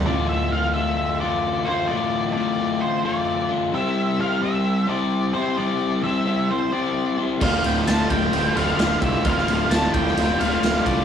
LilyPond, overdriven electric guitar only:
\new Staff \with { instrumentName = "Overdriven electric guitar" } { \time 4/4 \key d \minor \tempo 4 = 130 <d, a, d a f'>4 <d, a, d a f'>8 <d a f'>4 <d a f'>4 <d a f'>8 | <d, a, d a f'>4 <d, a, d a f'>8 <d a f'>4 <d a f'>4 <d a f'>8 | <c g c' e' g' c''>4 <c g c' e' g' c''>8 <c' e' g' c''>4 <c' e' g' c''>4 <c' e' g' c''>8 | <c g c' e' g' c''>4 <c g c' e' g' c''>8 <c' e' g' c''>4 <c' e' g' c''>4 <c' e' g' c''>8 |
<d, a, d a f'>4 <d, a, d a f'>8 <d a f'>4 <d a f'>4 <d a f'>8 | <d, a, d a f'>4 <d, a, d a f'>8 <d a f'>4 <d a f'>4 <d a f'>8 | }